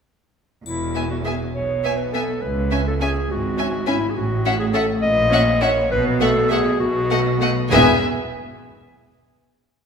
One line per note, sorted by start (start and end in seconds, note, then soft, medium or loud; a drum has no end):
0.65 1.40 E1 soft
0.65 1.40 E2 soft
0.65 1.07 E4 medium
0.65 triangle soft
0.95 1.03 B3 soft
0.95 1.03 E5 soft
0.95 1.04 G#5 soft
1.10 1.17 F#4 soft
1.24 1.33 B3 soft
1.24 1.38 G#4 soft
1.24 1.33 E5 soft
1.24 1.34 G#5 soft
1.53 2.28 B1 soft
1.53 2.28 B2 soft
1.53 1.99 C#5 medium
1.84 1.92 B3 soft
1.84 1.92 E5 soft
1.84 1.93 G#5 soft
1.97 2.12 B4 medium
2.12 2.22 B3 soft
2.12 2.43 A4 medium
2.12 2.22 E5 soft
2.12 2.23 G#5 soft
2.42 3.15 C#2 medium
2.42 3.15 C#2 soft
2.42 2.86 B4 medium
2.71 2.80 C#4 soft
2.71 2.79 E5 soft
2.71 2.80 G#5 soft
2.87 2.94 A4 medium
3.00 3.08 C#4 soft
3.00 3.32 G#4 medium
3.00 3.09 E5 soft
3.00 3.09 G#5 soft
3.28 4.02 G#1 medium
3.28 4.01 G#2 medium
3.28 3.87 F#4 medium
3.58 3.66 C#4 soft
3.58 3.66 E5 soft
3.58 3.67 G#5 soft
3.87 3.95 C#4 soft
3.87 4.11 E4 medium
3.87 3.95 E5 soft
3.87 3.96 G#5 medium
4.10 4.17 G#4 soft
4.15 4.89 A1 medium
4.15 4.89 A2 medium
4.15 4.59 F#4 medium
4.45 4.53 C#4 soft
4.45 4.53 E5 soft
4.45 4.54 F#5 soft
4.59 4.66 G#4 medium
4.73 4.82 C#4 soft
4.73 4.87 A4 medium
4.73 4.83 E5 medium
4.73 4.82 F#5 medium
5.02 5.77 A#1 medium
5.02 5.77 A#2 medium
5.02 5.64 D#5 loud
5.32 5.40 C#4 medium
5.32 5.40 E5 medium
5.32 5.41 F#5 medium
5.62 5.70 C#4 medium
5.62 5.91 C#5 medium
5.62 5.70 E5 medium
5.62 5.70 F#5 medium
5.91 6.66 B1 medium
5.91 6.65 B2 medium
5.91 6.05 B4 medium
6.21 6.29 A3 medium
6.21 6.50 A4 medium
6.21 6.29 E5 medium
6.21 6.29 F#5 medium
6.50 6.59 A3 medium
6.50 6.79 G#4 medium
6.50 6.58 E5 medium
6.50 6.59 F#5 medium
6.80 7.56 B1 medium
6.80 7.56 B2 medium
6.80 7.69 F#4 medium
7.11 7.19 A3 medium
7.11 7.19 D#5 medium
7.11 7.19 F#5 medium
7.41 7.50 A3 medium
7.41 7.49 D#5 medium
7.41 7.50 F#5 medium
7.71 8.04 E1 medium
7.71 8.04 E2 medium
7.71 8.05 B3 medium
7.71 7.96 G#4 medium
7.71 8.04 E5 medium
7.71 8.04 G#5 medium